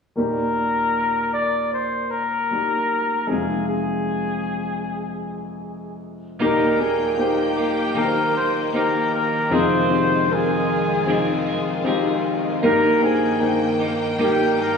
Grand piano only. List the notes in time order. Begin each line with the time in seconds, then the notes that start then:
0.16 D#2 A#2 G3 A#3 D#4 G4
2.51 G3 A#3 D#4 G4
3.27 F2 C3 G#3 C4 D#4
3.31 F4
6.41 D#2 A#2 A#3 D#4 G4 A#4
6.79 A#3 D#4 A#4
7.18 A#3 D#4 G4 C5
7.96 A#3 D#4 G4 A#4
8.04 C5
8.73 A#3 D#4 G4 C5
9.51 F2 C3 C4 D#4 F4 G#4
9.89 C4 D#4 F4 G4
10.28 C4 D#4 F4 A#4
11.06 C4 D#4 F4 G#4
11.84 C4 D#4 F4 G4
12.62 G2 D#3 A#3 D#4 G4 A#4
13.01 A#3 D#4 C5 G5
13.40 A#3 D#4 C5 G5
14.19 A#3 D#4 G4 A#4